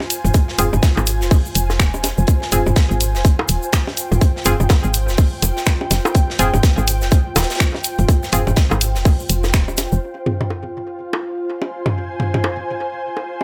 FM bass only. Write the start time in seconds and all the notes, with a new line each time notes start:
0.25 F1
0.58 F1
0.73 F1
0.97 G#1
1.21 F1
1.55 F1
1.79 D#1
2.04 F1
2.18 F1
2.52 F1
2.66 F1
2.91 G#1
3.15 F1
3.49 D#1
4.12 F1
4.46 F1
4.60 F1
4.84 G#1
5.08 F1
5.42 F1
5.91 F1
6.39 F1
6.54 F1
6.78 G#1
7.02 F1
7.36 D#1
7.99 F1
8.33 F1
8.47 F1
8.71 G#1
8.96 F1
9.29 F1
9.54 D#1
9.78 F1
9.92 F1